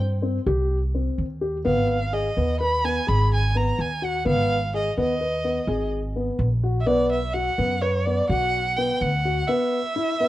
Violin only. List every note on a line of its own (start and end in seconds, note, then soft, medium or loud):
1.67 2.15 F5 medium
2.13 2.60 D#5 medium
2.60 2.86 B5 medium
2.84 3.10 G#5 medium
3.08 3.31 B5 medium
3.34 3.58 G#5 medium
3.57 3.83 A#5 medium
3.81 4.06 G#5 medium
4.04 4.27 F#5 medium
4.28 4.71 F5 medium
4.76 4.97 D#5 medium
5.00 5.89 D#5 medium
6.80 6.88 E5 medium
6.87 7.10 D5 medium
7.12 7.35 E5 medium
7.33 7.83 F#5 medium
7.82 8.07 C#5 medium
8.06 8.29 D5 medium
8.29 8.78 F#5 medium
8.76 9.02 G5 medium
9.01 9.49 F#5 medium
9.47 10.28 E5 medium